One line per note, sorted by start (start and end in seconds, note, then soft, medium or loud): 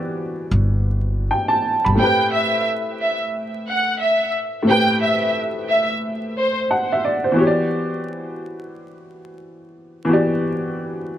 0.00 1.94 E3 medium
0.00 1.95 B3 medium
0.00 1.96 F#4 medium
0.00 1.97 G4 medium
0.00 1.98 D5 medium
0.51 1.28 G1 medium
1.31 1.50 G5 medium
1.48 1.82 A5 medium
1.84 1.97 G1 medium
1.84 2.17 B5 medium
1.95 4.61 A2 medium
1.95 4.63 A3 medium
1.95 2.29 G5 loud
1.99 4.65 C4 medium
1.99 4.66 G4 medium
2.03 4.67 B4 medium
2.33 2.63 E5 medium
3.01 3.19 E5 medium
3.68 3.98 F#5 medium
4.01 4.31 E5 medium
4.63 7.31 A2 medium
4.63 7.32 A3 medium
4.67 7.33 C4 medium
4.67 7.34 G4 medium
4.67 4.99 G5 loud
4.71 6.68 B4 medium
5.03 5.33 E5 medium
5.69 5.88 E5 medium
6.37 6.55 C5 medium
6.71 6.90 F#5 medium
6.92 7.05 E5 medium
7.05 7.24 D5 medium
7.24 7.56 C5 medium
7.32 10.01 E3 medium
7.32 10.02 B3 medium
7.36 10.03 F#4 medium
7.36 10.04 G4 medium
7.40 7.47 C#5 medium
7.47 10.08 D5 medium
10.05 11.18 E3 medium
10.05 11.18 B3 medium
10.09 11.18 F#4 medium
10.09 11.18 G4 medium
10.13 11.18 D5 medium